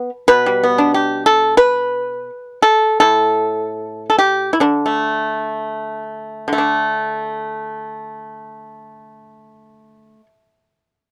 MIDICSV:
0, 0, Header, 1, 2, 480
1, 0, Start_track
1, 0, Tempo, 643087
1, 222, Time_signature, 4, 2, 24, 8
1, 704, Tempo, 679502
1, 1664, Tempo, 740741
1, 2624, Tempo, 829876
1, 3104, Tempo, 940439
1, 3584, Tempo, 1015228
1, 4544, Tempo, 985222
1, 5504, Tempo, 1045296
1, 6219, End_track
2, 0, Start_track
2, 0, Title_t, "Pipa"
2, 0, Program_c, 0, 105
2, 208, Note_on_c, 0, 71, 78
2, 213, Note_on_c, 0, 47, 44
2, 346, Note_on_c, 0, 55, 40
2, 474, Note_on_c, 0, 59, 39
2, 585, Note_on_c, 0, 62, 39
2, 702, Note_off_c, 0, 59, 0
2, 704, Note_on_c, 0, 67, 38
2, 902, Note_off_c, 0, 71, 0
2, 925, Note_off_c, 0, 67, 0
2, 928, Note_on_c, 0, 69, 70
2, 1146, Note_off_c, 0, 69, 0
2, 1149, Note_on_c, 0, 71, 79
2, 1297, Note_off_c, 0, 55, 0
2, 1541, Note_off_c, 0, 62, 0
2, 1660, Note_off_c, 0, 47, 0
2, 1858, Note_off_c, 0, 71, 0
2, 1873, Note_on_c, 0, 69, 62
2, 2103, Note_off_c, 0, 69, 0
2, 2116, Note_on_c, 0, 69, 69
2, 2127, Note_on_c, 0, 45, 40
2, 2778, Note_off_c, 0, 69, 0
2, 2805, Note_on_c, 0, 69, 41
2, 2854, Note_off_c, 0, 69, 0
2, 2856, Note_on_c, 0, 67, 55
2, 3037, Note_off_c, 0, 67, 0
2, 3055, Note_on_c, 0, 64, 40
2, 3097, Note_on_c, 0, 50, 36
2, 3099, Note_off_c, 0, 64, 0
2, 3102, Note_off_c, 0, 45, 0
2, 3102, Note_on_c, 0, 62, 51
2, 3228, Note_on_c, 0, 57, 31
2, 3806, Note_off_c, 0, 62, 0
2, 4015, Note_off_c, 0, 50, 0
2, 4021, Note_on_c, 0, 50, 32
2, 4038, Note_off_c, 0, 57, 0
2, 4044, Note_on_c, 0, 57, 33
2, 4070, Note_on_c, 0, 62, 33
2, 5779, Note_off_c, 0, 50, 0
2, 5802, Note_off_c, 0, 57, 0
2, 5827, Note_off_c, 0, 62, 0
2, 6219, End_track
0, 0, End_of_file